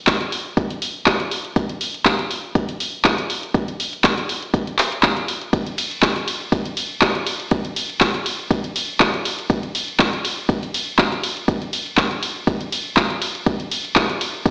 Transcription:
0.07 kick, clap, closed hi-hat
0.21 closed hi-hat
0.32 open hi-hat
0.57 kick, closed hi-hat
0.70 closed hi-hat
0.82 open hi-hat
1.06 kick, clap, closed hi-hat
1.20 closed hi-hat
1.31 open hi-hat
1.45 closed hi-hat
1.56 kick, closed hi-hat
1.69 closed hi-hat
1.81 open hi-hat
1.94 closed hi-hat
2.05 kick, clap, closed hi-hat
2.19 closed hi-hat
2.31 open hi-hat
2.55 kick, closed hi-hat
2.69 closed hi-hat
2.80 open hi-hat
3.05 kick, clap, closed hi-hat
3.18 closed hi-hat
3.30 open hi-hat
3.43 closed hi-hat
3.54 kick, closed hi-hat
3.68 closed hi-hat
3.80 open hi-hat
3.93 closed hi-hat
4.04 kick, clap, closed hi-hat
4.18 closed hi-hat
4.29 open hi-hat
4.42 closed hi-hat
4.54 kick, closed hi-hat
4.67 closed hi-hat
4.79 clap, open hi-hat
4.92 closed hi-hat
5.03 kick, clap, closed hi-hat
5.17 closed hi-hat
5.28 open hi-hat
5.41 closed hi-hat
5.53 kick, closed hi-hat, ride
5.67 closed hi-hat
5.78 open hi-hat, ride
5.91 closed hi-hat
6.02 kick, clap, closed hi-hat, ride
6.16 closed hi-hat
6.28 open hi-hat, ride
6.52 kick, closed hi-hat, ride
6.65 closed hi-hat
6.77 open hi-hat, ride
7.01 kick, clap, closed hi-hat, ride
7.15 closed hi-hat
7.27 open hi-hat, ride
7.40 closed hi-hat
7.51 kick, closed hi-hat, ride
7.65 closed hi-hat
7.76 open hi-hat, ride
7.90 closed hi-hat
8.01 kick, clap, closed hi-hat, ride
8.14 closed hi-hat
8.26 open hi-hat, ride
8.51 kick, closed hi-hat, ride
8.64 closed hi-hat
8.76 open hi-hat, ride
9.00 kick, clap, closed hi-hat, ride
9.14 closed hi-hat
9.25 open hi-hat, ride
9.39 closed hi-hat
9.50 kick, closed hi-hat, ride
9.63 closed hi-hat
9.75 open hi-hat, ride
9.88 closed hi-hat
9.99 kick, clap, closed hi-hat, ride
10.13 closed hi-hat
10.25 open hi-hat, ride
10.49 kick, closed hi-hat, ride
10.63 closed hi-hat
10.74 open hi-hat, ride
10.99 kick, clap, closed hi-hat, ride
11.12 closed hi-hat
11.23 open hi-hat, ride
11.37 closed hi-hat
11.48 kick, closed hi-hat, ride
11.62 closed hi-hat
11.73 open hi-hat, ride
11.86 closed hi-hat
11.97 kick, clap, closed hi-hat, ride
12.11 closed hi-hat
12.23 open hi-hat, ride
12.47 kick, closed hi-hat, ride
12.61 closed hi-hat
12.72 open hi-hat, ride
12.97 kick, clap, closed hi-hat, ride
13.10 closed hi-hat
13.22 open hi-hat, ride
13.35 closed hi-hat
13.46 kick, closed hi-hat, ride
13.60 closed hi-hat
13.71 open hi-hat, ride
13.85 closed hi-hat
13.96 kick, clap, closed hi-hat, ride
14.10 closed hi-hat
14.21 open hi-hat, ride
14.46 kick, closed hi-hat, ride

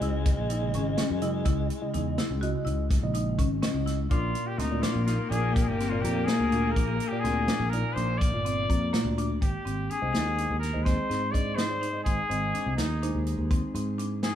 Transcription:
Already playing: G#3
0.00 C#2 C#3 G#3 E4 D#5, closed hi-hat
0.26 kick, snare, closed hi-hat
0.38 A#1
0.50 D#4, closed hi-hat
0.62 C#3 G#3 E4 D#5
0.74 G#1 C#4, closed hi-hat
0.98 C#4, snare, closed hi-hat
1.10 F#2
1.21 C#3 G#3 E4 D#5, closed hi-hat
1.45 C#2 E4, kick, closed hi-hat
1.70 closed hi-hat
1.82 C#3 G#3 E4 D#5
1.94 E2 D#4, closed hi-hat
2.18 E4, snare, closed hi-hat
2.31 C#2
2.41 C#3 G#3 E4 F#4 D#5, closed hi-hat
2.65 C#2 E4, closed hi-hat
2.91 kick, snare, closed hi-hat
3.02 A#1 C#3 G#3 E4 D#5
3.14 D#4, closed hi-hat
3.38 G#1 C#4, kick, closed hi-hat
3.62 C#3 G#3 C#4 E4 D#5, snare, closed hi-hat
3.74 C#2
3.86 E4, snare, closed hi-hat
4.10 A#1 A#2 A#3 D4 F4 D5, kick, closed hi-hat
4.35 closed hi-hat
4.47 G4
4.58 D2 C4 D#4, snare, closed hi-hat
4.70 A#2 A#3 F4 D5
4.82 D4 F4, snare, closed hi-hat
4.95 A#1
5.05 D#4 F4, snare, closed hi-hat
5.30 A#1 A#2 A#3 D4 F4 G#4 D5, closed hi-hat
5.54 G4, kick, closed hi-hat
5.62 G#4
5.68 G1 G4
5.80 C4, snare, closed hi-hat
5.89 A#2 A#3 F4 D5
6.01 F2 A#3 G4, closed hi-hat
6.25 A#3 G#4, snare, closed hi-hat
6.40 D2
6.52 A#2 A#3 D4 F4 G#4, closed hi-hat
6.71 A#4
6.76 A#1 D4, kick, closed hi-hat
7.00 closed hi-hat
7.08 A#2 G4
7.12 A#3 F4 D5
7.20 G#4
7.24 D2 C4, snare, closed hi-hat
7.48 D4, snare, closed hi-hat
7.60 A#1
7.69 D#4 A#4, closed hi-hat
7.73 A#2 A#3 F4 D5
7.93 A#1 D4 C5, closed hi-hat
8.18 D5, kick, closed hi-hat
8.32 G1 A#2 A#3 F4 D5
8.45 C4, closed hi-hat
8.69 F2 A#3, kick, closed hi-hat
8.93 A#2 A#3 F4 D5, snare, closed hi-hat
9.05 D2
9.18 D4, closed hi-hat
9.42 G#1 G4, kick, closed hi-hat
9.65 G#1 C4, closed hi-hat
9.90 D4 G#4, closed hi-hat
10.01 C2 G#3 G#4 C5 D#5
10.13 D#2 D#4, snare, closed hi-hat
10.38 D4, closed hi-hat
10.50 D#2
10.59 A#4, snare, closed hi-hat
10.73 D#2 G#3 G#4 C5 D#5
10.84 G#3 C4 G#4 C5 D#5, kick, snare, closed hi-hat
11.10 G#2 C4, snare, closed hi-hat
11.31 G#3 D4 G#4 C5 D5 D#5, kick, closed hi-hat
11.55 G#3 D#4 G#4 C5 D#5, snare, closed hi-hat
11.69 G#3 G#4 C5 D5
11.81 D#4, closed hi-hat
11.93 G#3 G#4 C5 D#5
12.04 G#1 G#4, kick, closed hi-hat
12.29 G#1 G#3 C4 G#4 C5 D#5, closed hi-hat
12.54 D4, closed hi-hat
12.66 C2
12.76 D#2 D#4, snare, closed hi-hat
13.03 G#3 D4 D#4 G#4 C5, closed hi-hat
13.15 D#2
13.26 closed hi-hat
13.38 D#2
13.51 C4, kick, closed hi-hat
13.74 G#2 C4, closed hi-hat
13.98 D4, closed hi-hat
14.23 D#4 G#4, snare, closed hi-hat

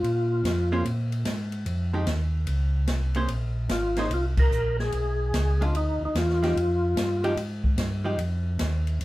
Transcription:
Already playing: F4
0.03 A#2, ride
0.44 F2, snare, hi-hat pedal, ride
0.72 A#3 C#4 G#4 C5
0.85 A#2, ride
1.12 ride
1.25 G#2, snare, hi-hat pedal, ride
1.52 ride
1.66 F2, ride
1.93 F3 G#3 D#4 G4
2.06 D#2, snare, hi-hat pedal, ride
2.47 C#2, ride
2.87 C2, snare, hi-hat pedal, ride
3.15 A#3 C#4 G#4 C5, ride
3.28 A#1, ride
3.69 G#1 F4, snare, hi-hat pedal, ride
3.96 A#3 C#4 D#4 G#4 C5, snare, ride
4.10 C2 F4, ride
4.37 A#4, kick, crash
4.51 A#1, hi-hat pedal
4.79 G#4, snare
4.92 B1, ride
5.33 C#2, snare, hi-hat pedal, ride
5.61 G#3 D4 F4, ride
5.74 D2 D#4, ride
6.01 D2
6.05 D#4
6.15 E2 F4, snare, hi-hat pedal, ride
6.30 snare
6.43 F3 G#3 D#4 G4, snare, ride
6.56 F2, ride
6.96 G2, snare, hi-hat pedal, ride
7.24 F3 G#3 D#4 G4, ride
7.36 G#2, ride
7.64 kick
7.78 G2, snare, hi-hat pedal, ride
8.04 F3 G#3 D#4 G4
8.18 F2, ride
8.59 D#2, snare, hi-hat pedal, ride
8.87 ride
9.01 F2, ride

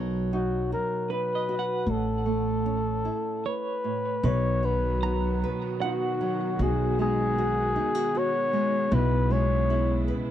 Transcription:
Already playing: B1 B2 F#3
0.33 D#4 F#4
0.72 F#4 A#4
1.10 D#4 B4
1.35 D#5
1.49 F#4
1.59 F#5
1.86 A1 A2 A4
2.26 A3
2.66 C#4
3.05 E4
3.46 B4 C#5
3.84 A2
4.23 B1 B2 D#3 F#3 B3 F#4 B4 C#5
4.63 F#3 B4
5.03 F#4 A#5
5.44 B4
5.82 D#4 F#4 F#5
6.21 F#3
6.59 B1 B2 G#3 B3 F#4 G#4
6.99 G#3 G#4
7.38 F#4
7.76 D#4
7.95 F#4
8.15 F#4 C#5
8.53 G#3
8.91 B1 B2 C#3 E4 B4
9.30 G#3 C#5
9.70 E4
10.08 B4

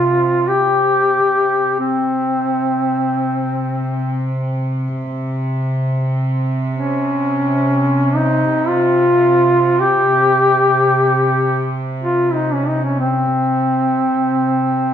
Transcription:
Already playing: C3 F4
0.49 G4
1.30 C3
1.79 C4
6.74 C#4
8.16 D#4
8.68 F4
9.81 G4
12.04 F4
12.33 D#4
12.53 C#4
12.68 D#4
12.83 C#4
13.00 C4

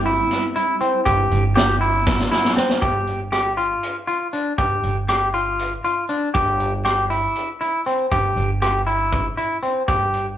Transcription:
Already playing: G1 G3 C4 E4
0.06 E4, closed hi-hat
0.31 snare, closed hi-hat
0.56 E4, closed hi-hat
0.81 C4, closed hi-hat
1.05 G1 G4, kick, closed hi-hat
1.31 G1, closed hi-hat
1.56 G4, snare, closed hi-hat
1.81 E4, closed hi-hat
2.07 kick, snare
2.20 snare
2.32 E4, snare
2.45 snare
2.56 C4, snare
2.69 snare
2.82 G1 G4, kick, closed hi-hat
3.07 closed hi-hat
3.32 G4, cross-stick, closed hi-hat
3.57 F4, closed hi-hat
3.83 closed hi-hat
4.07 F4, closed hi-hat
4.33 D4, closed hi-hat
4.58 G1 G4, kick, closed hi-hat
4.83 G1, closed hi-hat
5.08 G4, cross-stick, closed hi-hat
5.34 F4, closed hi-hat
5.59 closed hi-hat
5.84 F4, closed hi-hat
6.09 D4, closed hi-hat
6.34 G1 G4, kick, closed hi-hat
6.60 closed hi-hat
6.85 G4, cross-stick, closed hi-hat
7.10 E4, closed hi-hat
7.36 closed hi-hat
7.61 E4, closed hi-hat
7.86 C4, closed hi-hat
8.11 G1 G4, kick, closed hi-hat
8.37 G1, closed hi-hat
8.62 G4, cross-stick, closed hi-hat
8.87 E4, closed hi-hat
9.12 kick, closed hi-hat
9.37 E4, closed hi-hat
9.63 C4, closed hi-hat
9.88 G1 G4, kick, closed hi-hat
10.14 closed hi-hat

